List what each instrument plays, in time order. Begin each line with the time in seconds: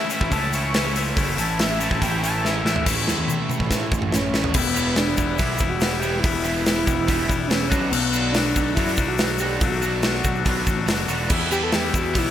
Already playing: clean electric guitar E3 A3 C#4 E4, analog synth lead E5
0.10 clean electric guitar A2 E3 A3 C#4 E4, analog synth lead E5, open hi-hat, shaker
0.21 picked electric bass A1, kick
0.30 picked electric bass C#2, clean electric guitar A2 E3 A3 C#4 E4, analog synth lead A5, kick, open hi-hat, shaker
0.53 clean electric guitar A2 E3 A3 C#4 E4, analog synth lead C#6, open hi-hat, shaker
0.73 clean electric guitar A2 E3 A3 C#4 E4, snare, open hi-hat, shaker
0.95 clean electric guitar A2 E3 A3 C#4 E4, open hi-hat, shaker
1.16 picked electric bass F#1, clean electric guitar A2 E3 A3 C#4 E4, kick, open hi-hat, shaker
1.36 picked electric bass A1, clean electric guitar A2 E3 A3 C#4 E4, analog synth lead A5, open hi-hat, shaker
1.50 shaker
1.58 clean electric guitar A2 E3 A3 C#4 E4, analog synth lead E5, snare, open hi-hat, shaker
1.79 clean electric guitar A2 E3 A3 C#4 E4, analog synth lead A5, open hi-hat, shaker
1.91 picked electric bass A1, kick, shaker
2.01 picked electric bass A1, clean electric guitar A2 E3 A3 C#4 E4, analog synth lead G5, kick, open hi-hat, shaker
2.23 clean electric guitar A2 E3 A3 C#4 E4, analog synth lead A5, open hi-hat, shaker
2.35 shaker
2.43 clean electric guitar A2 E3 A3 C#4 E4, analog synth lead E5, snare, shaker
2.64 picked electric bass A1, clean electric guitar A2 E3 A3 C#4 E4, analog synth lead E5, snare, shaker
2.76 floor tom
2.85 picked electric bass A1, clean electric guitar A2 E3 A3 C#4 E4, analog synth pad A4 E5 C#6, kick, snare, crash, shaker
3.06 picked electric bass E2, snare, shaker
3.18 high tom
3.28 mid tom, shaker
3.49 mid tom, shaker
3.60 picked electric bass A1, kick
3.70 picked electric bass A2, kick, snare, shaker
3.92 picked electric bass A1, kick, shaker
4.02 mid tom
4.12 analog synth lead C#4, snare, shaker
4.33 overdriven electric guitar A2 E3 A3 C#4 E4, snare, shaker
4.44 floor tom
4.54 picked electric bass E1, clean electric guitar E2 B2 E3 G3 B3 E4, analog synth pad G3 E5 B5, analog synth lead B3, muted overdriven electric guitar stroke, kick, crash, shaker
4.75 overdriven electric guitar E3 G4, clean electric guitar B3 E4, shaker
4.79 clean electric guitar E3 G3
4.96 clean electric guitar E3 G3, analog synth lead D4, muted overdriven electric guitar stroke, snare, open hi-hat, shaker
5.00 clean electric guitar B3 E4
5.17 picked electric bass E1, clean electric guitar E2 B2 E3 G3 B3 E4, muted overdriven electric guitar stroke, kick, shaker
5.38 picked electric bass B1, clean electric guitar E3 G3 B3, analog synth lead E4, overdriven electric guitar G4, kick, open hi-hat, shaker
5.42 clean electric guitar E4
5.58 picked electric bass E1, clean electric guitar E3 G3 B3 E4, muted overdriven electric guitar stroke, kick, shaker
5.63 clean electric guitar E2 B2
5.69 analog synth lead F#4
5.80 clean electric guitar E3 G3 B3, muted overdriven electric guitar stroke, snare, open hi-hat, shaker
5.85 clean electric guitar E4
6.00 clean electric guitar B3 E4, analog synth lead G4, overdriven electric guitar G4, shaker
6.04 clean electric guitar E3 G3
6.20 clean electric guitar E2, analog synth lead E4, muted overdriven electric guitar stroke, shaker
6.24 picked electric bass E1, clean electric guitar B2 E3 G3 B3 E4, kick, open hi-hat
6.44 clean electric guitar E3 G3 B3 E4, overdriven electric guitar G4, shaker
6.65 clean electric guitar E3 G3 B3 E4, muted overdriven electric guitar stroke, snare, open hi-hat, shaker
6.86 picked electric bass E1, clean electric guitar E2 B2 E3 G3 B3 E4, muted overdriven electric guitar stroke, kick, shaker
7.06 picked electric bass E1, clean electric guitar E3 G3 B3 E4, overdriven electric guitar G4, kick, open hi-hat, shaker
7.28 picked electric bass E1, clean electric guitar E2 B2 E3 G3 B3 E4, muted overdriven electric guitar stroke, kick, shaker
7.47 clean electric guitar E3 G3, analog synth lead C#4, muted overdriven electric guitar stroke, snare, open hi-hat, shaker
7.52 clean electric guitar B3 E4
7.68 picked electric bass B1, clean electric guitar A3 D4 F#4, overdriven electric guitar B3, analog synth lead C#4, analog synth pad A4 D5 B5, kick, shaker
7.72 clean electric guitar B2 F#3
7.91 picked electric bass B1, clean electric guitar B2 F#3 A3 D4 F#4, analog synth lead B3, muted overdriven electric guitar stroke, crash, shaker
8.12 overdriven electric guitar F#3 B3, clean electric guitar A3 D4 F#4, shaker
8.32 clean electric guitar F#3 A3 D4, analog synth lead D4, muted overdriven electric guitar stroke, snare, open hi-hat, shaker
8.37 clean electric guitar F#4
8.54 picked electric bass B1, clean electric guitar F#3 A3 D4 F#4, muted overdriven electric guitar stroke, kick, shaker
8.59 clean electric guitar B2
8.75 picked electric bass F#2, clean electric guitar F#3 A3 D4, overdriven electric guitar B3, analog synth lead E4, kick, open hi-hat, shaker
8.79 clean electric guitar F#4
8.97 picked electric bass B1, clean electric guitar A3 D4 F#4, muted overdriven electric guitar stroke, kick, shaker
9.01 clean electric guitar B2 F#3
9.08 analog synth lead F#4
9.18 clean electric guitar F#3 A3, muted overdriven electric guitar stroke, snare, open hi-hat, shaker
9.22 clean electric guitar D4 F#4
9.38 overdriven electric guitar F#3 B3, clean electric guitar F#4, analog synth lead G4, analog synth pad C#6, shaker
9.43 clean electric guitar A3 D4
9.60 picked electric bass B1, clean electric guitar B2 F#3 A3 D4, analog synth lead F#4, muted overdriven electric guitar stroke, kick, open hi-hat, shaker
9.64 clean electric guitar F#4
9.81 overdriven electric guitar F#3 B3, clean electric guitar A3 D4 F#4, shaker
10.02 clean electric guitar F#3 A3 D4 F#4, muted overdriven electric guitar stroke, snare, open hi-hat, shaker
10.14 snare
10.24 picked electric bass B1, clean electric guitar B2 F#3 A3 D4 F#4, muted overdriven electric guitar stroke, kick, shaker
10.35 shaker
10.45 picked electric bass B1, clean electric guitar F#3 A3 D4 F#4, overdriven electric guitar B3, kick, open hi-hat, shaker
10.67 picked electric bass A1, clean electric guitar B2 F#3 A3 D4 F#4, muted overdriven electric guitar stroke, kick, shaker
10.86 picked electric bass F#1, clean electric guitar F#3 A3, muted overdriven electric guitar stroke, snare, open hi-hat, shaker
10.90 clean electric guitar D4 F#4
11.08 picked electric bass E1, overdriven electric guitar F#3 B3, clean electric guitar D4 F#4, shaker
11.13 clean electric guitar A3
11.29 clean electric guitar E2 B2 E3 G3 B3 E4, picked electric bass E2, analog synth pad G4 E5 B5, muted overdriven electric guitar stroke, kick, crash, shaker
11.51 clean electric guitar E3 G3 B3 E4, analog synth lead G4, tine electric piano G5, shaker
11.63 analog synth lead A4, tine electric piano A5
11.72 clean electric guitar E3 G3 B3 E4, analog synth lead G4, tine electric piano G5, muted overdriven electric guitar stroke, snare, open hi-hat, shaker
11.94 picked electric bass E2, clean electric guitar E2 E3 G3 B3 E4, analog synth lead F#4, tine electric piano F#5, muted overdriven electric guitar stroke, kick, shaker
11.98 clean electric guitar B2
12.15 picked electric bass B1, clean electric guitar E3 G3 B3 E4, analog synth lead E4, tine electric piano E5, kick, open hi-hat, shaker